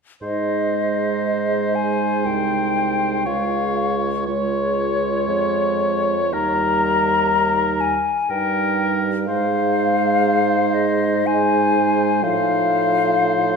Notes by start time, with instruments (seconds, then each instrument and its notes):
0.22 bassoon G#2, french horn G#3, clarinet D#4, oboe C5, flute D#5
1.75 flute G#5
2.25 bassoon C2, flute G5
3.26 bassoon C#2, french horn G#3, clarinet F4, oboe C#5, flute F5
4.26 french horn G#3, clarinet F4, oboe C#5, flute C#5
5.27 bassoon F2
6.32 bassoon D#2, french horn G3, clarinet D#4, oboe A#4, flute A#5
7.80 flute G#5
8.30 bassoon G2, french horn G3, clarinet D#4, oboe A#4, flute G5
9.27 bassoon G#2, french horn G#3, clarinet D#4, oboe C5, flute F5
10.74 flute D#5
11.27 french horn G#3, clarinet D#4, oboe C5, flute G#5
12.22 bassoon A2, french horn F3, clarinet D#4, oboe C5, flute F5